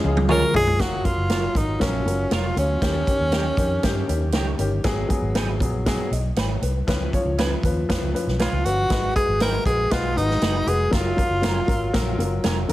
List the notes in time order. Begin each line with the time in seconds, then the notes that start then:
0.04 C#2 F3 G#3 C#4 G#4
0.17 high tom
0.28 F3 G#3 C#4 F4 G#4 A#4 C#5 C#6, mid tom
0.54 B1 F3 G#3 C#4 G#4, floor tom
0.67 floor tom
0.80 F#1 F#3 F4 F#4 A#4, kick, snare, closed hi-hat
1.05 F#3 F4 A#4, kick, closed hi-hat
1.17 F#1
1.30 F#3 F4 A#4 C#5, snare, closed hi-hat
1.55 G#1 F#3 D#4 F4 A#4, kick, closed hi-hat
1.80 A#1 F#3 C#4 F4 A#4, kick, snare, closed hi-hat
2.05 F#1 F#3 F4 A#4, closed hi-hat
2.31 F1 F#3 F4 A#4 C#5, snare, closed hi-hat
2.56 D2 F#3 C#4 F4 C#5, closed hi-hat
2.81 D#2 D#3 C#4 G4, kick, snare, closed hi-hat
3.07 D#3 C#4 G4, kick, closed hi-hat
3.20 D#2
3.32 D#3 C#4 D#4 G4 C#5, snare, closed hi-hat
3.57 F2 D#3 C#4 G4, kick, closed hi-hat
3.83 G2 D#3 C#4 G4, kick, snare, closed hi-hat
4.08 D#2 D#3 C#4 G4, closed hi-hat
4.32 C#2 D#3 C#4 D#4 G4 C#5, snare, closed hi-hat
4.58 G1 D#3 C#4 G4, closed hi-hat
4.84 G#1 F#3 B3 G#4, kick, snare, closed hi-hat
5.09 F#3 B3 G#4, kick, closed hi-hat
5.22 G#1
5.35 F#3 B3 D#4 F#4 G#4 B4, snare, closed hi-hat
5.60 A#1 F#3 B3 G#4, kick, closed hi-hat
5.86 F#3 B3 G#4, kick, snare, closed hi-hat
6.11 B1 D#5, closed hi-hat
6.36 G#1 D#4 F#4 B4 C#5, snare, closed hi-hat
6.62 C2 B4, closed hi-hat
6.87 C#2 F3 C#4 B4, kick, snare, closed hi-hat
7.13 F3 C#4 C#5, kick, closed hi-hat
7.25 C#2
7.38 F3 C#4 F4 B4, snare, closed hi-hat
7.63 D#2 F3 C#4 B4, kick, closed hi-hat
7.89 F2 F3 C#4 B4, kick, snare, closed hi-hat
8.02 C#2
8.13 F3 C#4 B4, closed hi-hat
8.27 B1, snare
8.39 F3 C#4 F4 B4, snare, closed hi-hat
8.52 C#2
8.65 G1 F3 C#4 F#4 B4, closed hi-hat
8.90 G#1 G#3 F#4 B4, kick, snare, closed hi-hat
9.15 G#3 F#4 G#4 B4, kick, closed hi-hat
9.28 G#1
9.40 G#3 D#4 F#4 A#4 B4, snare, closed hi-hat
9.65 A#1 G#3 F#4 G#4 B4, kick, closed hi-hat
9.91 B1 G#3 F4 F#4 B4, kick, snare, closed hi-hat
10.16 G#1 G#3 D#4 F#4 B4, closed hi-hat
10.31 snare
10.41 F#1 G#3 D#4 F#4 B4, snare, closed hi-hat
10.66 F1 G#3 F#4 G#4 B4, closed hi-hat
10.91 F#1 F#3 F4 A#4, kick, snare, closed hi-hat
11.17 F#3 F4 A#4, kick, closed hi-hat
11.30 F#1
11.42 F#3 C#4 F4 A#4, snare, closed hi-hat
11.68 G#1 F#3 F4 A#4, kick, closed hi-hat
11.93 A#1 F#3 F4 A#4, kick, snare, closed hi-hat
12.18 F#1 F#3 F4 A#4, closed hi-hat
12.44 F1 F#3 C#4 F4 A#4, snare, closed hi-hat
12.69 G1 F#3 F4 A#4, closed hi-hat